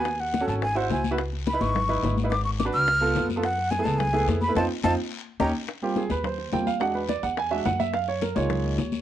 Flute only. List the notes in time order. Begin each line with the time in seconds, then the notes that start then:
Already playing: G#5
0.20 F#5
0.48 A5
0.63 G#5
0.77 F#5
0.92 G#5
1.47 B5
1.61 C#6
2.31 D6
2.44 C#6
2.59 D6
2.73 F6
3.43 F#5
3.71 G#5
3.84 A5
3.99 G#5
4.42 B5
4.56 A5
4.84 A5
5.40 A#5